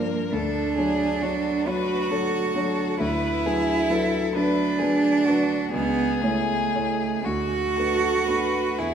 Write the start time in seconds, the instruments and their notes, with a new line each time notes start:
Already playing: grand piano G2 F3 D4 D5, cello A#3, violin A#4
0.32 grand piano D2, cello D4, violin A4
0.77 grand piano F#3 D4 C#5, violin G#4
1.22 grand piano F#3 D4 C#5, violin F#4
1.66 grand piano F#3 D4 C#5, cello F#4, violin B4
2.10 grand piano F#3 D4 C#5, violin A4
2.55 grand piano F#3 D4 C#5, violin A4
3.00 grand piano D2, cello E4, violin B4
3.45 grand piano F#3 D4 B4, violin G#4
3.90 grand piano F#3 D4 B4, violin A4
4.34 grand piano F#3 D4 B4, cello D4, violin B4
4.79 grand piano F#3 D4 B4, violin G#4
5.25 grand piano F#3 D4 B4, violin F#4
5.71 grand piano C#2, cello B3, violin G#4
6.21 cello A3, grand piano A3 E4 C#5
6.75 grand piano A3 E4 C#5
7.25 grand piano D2, cello F#4, violin F#4
7.77 grand piano A3 D4 B4, violin A4
8.26 grand piano A3 D4 B4, violin B4
8.78 grand piano E2, cello E4, violin G#4